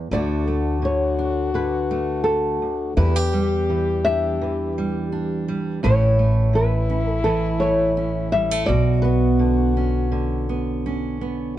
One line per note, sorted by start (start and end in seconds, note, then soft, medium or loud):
0.00 0.11 E2 medium
0.00 0.10 E4 medium
0.10 2.94 D2 medium
0.10 2.61 D2 medium
0.10 0.81 D3 medium
0.10 0.46 A3 medium
0.10 1.18 D4 medium
0.10 2.93 F#4 loud
0.10 0.85 D5 medium
0.14 2.95 F#4 medium
0.48 1.90 A3 soft
0.82 1.53 D3 medium
0.82 1.52 C#5 medium
1.19 2.93 D4 soft
1.54 3.69 D3 medium
1.54 2.29 B4 medium
1.91 2.94 A3 medium
2.24 2.92 A4 medium
2.62 2.97 D2 medium
2.97 5.78 E2 medium
2.97 5.79 E2 medium
2.97 3.16 E4 medium
2.97 5.52 G4 loud
2.97 4.04 B4 medium
3.16 5.83 G4 medium
3.33 4.76 G3 medium
3.69 4.41 E3 medium
4.05 5.11 D4 medium
4.05 4.72 E5 medium
4.41 5.79 E3 medium
4.78 5.47 G3 medium
5.12 5.79 D4 soft
5.48 5.84 G3 medium
5.83 8.65 A1 medium
5.83 8.68 A2 medium
5.83 6.52 E3 medium
5.83 6.18 A3 medium
5.83 6.89 C#4 medium
5.83 8.70 E4 loud
5.83 8.68 E4 medium
5.83 6.57 C#5 medium
6.19 7.61 A3 soft
6.53 7.23 E3 medium
6.53 7.09 B4 medium
6.90 7.97 C#4 medium
7.09 7.23 A4 medium
7.24 8.64 E3 medium
7.24 7.58 A4 medium
7.60 8.32 A3 soft
7.60 8.28 C#5 medium
7.97 8.71 C#4 medium
8.32 8.51 G3 medium
8.32 8.66 E5 medium
8.51 8.69 A3 medium
8.66 11.54 B1 medium
8.66 9.40 B2 medium
8.66 11.22 F#4 medium
8.66 11.54 F#4 medium
8.66 9.01 D5 loud
9.02 10.48 B3 medium
9.02 11.16 B4 medium
9.39 10.10 D3 medium
9.77 10.85 C#4 medium
10.12 11.59 D3 medium
10.49 11.20 B3 medium
10.86 11.54 C#4 medium
11.21 11.53 B3 soft